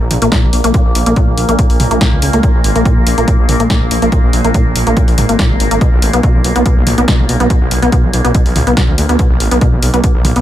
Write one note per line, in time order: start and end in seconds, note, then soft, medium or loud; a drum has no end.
0.00 0.08 A#1 medium
0.00 10.41 A#2 medium
0.00 10.41 A#3 medium
0.11 0.18 A#1 medium
0.11 mid tom medium
0.11 open hi-hat loud
0.22 0.29 A#1 medium
0.22 0.30 A#3 loud
0.22 closed hi-hat medium
0.32 0.45 A#2 loud
0.32 kick loud
0.32 snare loud
0.32 closed hi-hat medium
0.43 0.50 A#1 medium
0.43 0.46 G#3 medium
0.53 0.61 A#1 loud
0.53 open hi-hat loud
0.64 0.71 A#1 medium
0.64 0.72 A#3 loud
0.64 closed hi-hat medium
0.74 0.83 A#2 medium
0.74 kick loud
0.74 closed hi-hat medium
0.85 0.92 A#1 medium
0.95 1.03 A#1 medium
0.95 open hi-hat loud
1.06 1.13 A#1 medium
1.06 1.15 A#3 loud
1.06 closed hi-hat medium
1.16 1.29 A#2 loud
1.16 kick loud
1.16 closed hi-hat medium
1.28 1.34 A#1 medium
1.28 1.31 G#3 medium
1.37 1.45 A#1 loud
1.37 open hi-hat loud
1.49 1.55 A#1 medium
1.49 1.57 A#3 loud
1.49 closed hi-hat medium
1.59 1.68 A#2 medium
1.59 kick loud
1.59 closed hi-hat medium
1.70 1.77 A#1 medium
1.70 open hi-hat medium
1.80 1.87 B1 loud
1.80 mid tom medium
1.80 open hi-hat loud
1.91 1.98 A#1 medium
1.91 1.99 A#3 loud
1.91 closed hi-hat medium
2.01 2.14 A#2 loud
2.01 kick loud
2.01 snare loud
2.01 closed hi-hat medium
2.12 2.19 C#2 medium
2.12 2.15 G#3 medium
2.22 2.30 C#2 loud
2.22 open hi-hat loud
2.33 2.40 C#2 medium
2.33 2.41 A#3 loud
2.33 closed hi-hat medium
2.43 2.52 A#2 medium
2.43 kick loud
2.43 closed hi-hat medium
2.55 2.61 A#1 medium
2.64 2.72 G#1 medium
2.64 open hi-hat loud
2.75 2.82 A#1 medium
2.75 2.84 A#3 loud
2.75 closed hi-hat medium
2.85 2.98 A#2 loud
2.85 kick loud
2.85 closed hi-hat medium
2.97 3.03 A#1 medium
2.97 3.00 G#3 medium
3.07 3.14 A#1 loud
3.07 open hi-hat loud
3.18 3.25 A#1 medium
3.18 3.26 A#3 loud
3.18 closed hi-hat medium
3.28 3.37 A#2 medium
3.28 kick loud
3.28 closed hi-hat medium
3.39 3.46 A#1 medium
3.49 3.56 A#1 medium
3.49 mid tom medium
3.49 open hi-hat loud
3.60 3.67 A#1 medium
3.60 3.68 A#3 loud
3.60 closed hi-hat medium
3.70 3.83 A#2 loud
3.70 kick loud
3.70 snare loud
3.70 closed hi-hat medium
3.81 3.88 A#1 medium
3.81 3.84 G#3 medium
3.91 3.99 A#1 loud
3.91 open hi-hat loud
4.02 4.09 A#1 loud
4.02 4.10 A#3 loud
4.02 closed hi-hat medium
4.12 4.21 A#2 medium
4.12 kick loud
4.12 closed hi-hat medium
4.23 4.30 A#1 medium
4.33 4.41 A#1 loud
4.33 open hi-hat loud
4.44 4.51 A#1 medium
4.44 4.53 A#3 loud
4.44 closed hi-hat medium
4.54 4.67 A#2 loud
4.54 kick loud
4.54 closed hi-hat medium
4.66 4.72 A#1 medium
4.66 4.69 G#3 medium
4.76 4.83 A#1 loud
4.76 open hi-hat loud
4.87 4.93 A#1 medium
4.87 4.95 A#3 loud
4.87 closed hi-hat medium
4.97 5.06 A#2 medium
4.97 kick loud
4.97 closed hi-hat medium
5.08 5.15 A#1 medium
5.08 open hi-hat medium
5.18 5.25 G#1 loud
5.18 mid tom medium
5.18 open hi-hat loud
5.29 5.36 G#1 medium
5.29 5.37 A#3 loud
5.29 closed hi-hat medium
5.39 5.52 A#2 loud
5.39 kick loud
5.39 snare loud
5.39 closed hi-hat medium
5.50 5.57 G#1 medium
5.50 5.53 G#3 medium
5.60 5.68 G#1 loud
5.60 open hi-hat loud
5.71 5.78 G#1 medium
5.71 5.79 A#3 loud
5.71 closed hi-hat medium
5.81 5.90 B2 medium
5.81 kick loud
5.81 closed hi-hat medium
5.92 5.99 B1 medium
6.02 6.10 A1 loud
6.02 open hi-hat loud
6.13 6.20 B1 medium
6.13 6.22 B3 loud
6.13 closed hi-hat medium
6.23 6.36 B2 loud
6.23 kick loud
6.23 closed hi-hat medium
6.34 6.41 B1 medium
6.34 6.38 A3 medium
6.44 6.52 B1 loud
6.44 open hi-hat loud
6.56 6.62 B1 medium
6.56 6.64 B3 loud
6.56 closed hi-hat medium
6.66 6.75 B2 medium
6.66 kick loud
6.66 closed hi-hat medium
6.77 6.84 B1 medium
6.87 6.94 B1 loud
6.87 mid tom loud
6.87 open hi-hat loud
6.98 7.05 B1 medium
6.98 7.06 B3 loud
6.98 closed hi-hat medium
7.08 7.20 B2 loud
7.08 kick loud
7.08 snare loud
7.08 closed hi-hat medium
7.19 7.26 B1 medium
7.19 7.22 A3 medium
7.29 7.37 B1 loud
7.29 open hi-hat loud
7.40 7.47 B1 medium
7.40 7.48 B3 loud
7.40 closed hi-hat medium
7.50 7.59 B2 medium
7.50 kick loud
7.50 closed hi-hat medium
7.61 7.68 B1 medium
7.71 7.79 B1 medium
7.71 open hi-hat loud
7.82 7.89 B1 medium
7.82 7.91 B3 loud
7.82 closed hi-hat medium
7.92 8.05 B2 loud
7.92 kick loud
7.92 closed hi-hat medium
8.03 8.10 B1 medium
8.03 8.07 A3 medium
8.13 8.21 B1 loud
8.13 open hi-hat loud
8.24 8.31 B1 medium
8.24 8.33 B3 loud
8.24 closed hi-hat medium
8.34 8.44 B2 medium
8.34 kick loud
8.34 closed hi-hat medium
8.46 8.53 B1 medium
8.46 open hi-hat medium
8.56 8.63 C#2 loud
8.56 mid tom loud
8.56 open hi-hat loud
8.67 8.74 B1 medium
8.67 8.75 B3 loud
8.67 closed hi-hat medium
8.77 8.90 B2 loud
8.77 kick loud
8.77 snare loud
8.77 closed hi-hat medium
8.88 8.95 D2 medium
8.88 8.91 A3 medium
8.98 9.06 D2 loud
8.98 open hi-hat loud
9.09 9.16 D2 medium
9.09 9.17 B3 loud
9.09 closed hi-hat medium
9.19 9.28 B2 medium
9.19 kick loud
9.19 closed hi-hat medium
9.30 9.37 B1 medium
9.40 9.48 A1 loud
9.40 open hi-hat loud
9.51 9.58 B1 medium
9.51 9.60 B3 loud
9.51 closed hi-hat medium
9.61 9.74 B2 loud
9.61 kick loud
9.61 closed hi-hat medium
9.72 9.79 B1 medium
9.72 9.76 A3 medium
9.82 9.90 B1 loud
9.82 open hi-hat loud
9.94 10.00 B1 medium
9.94 10.02 B3 loud
9.94 closed hi-hat medium
10.04 10.13 B2 medium
10.04 kick loud
10.04 closed hi-hat medium
10.15 10.22 B1 medium
10.25 10.32 B1 loud
10.25 mid tom loud
10.25 open hi-hat loud
10.36 10.41 B1 medium
10.36 10.41 B3 loud
10.36 closed hi-hat medium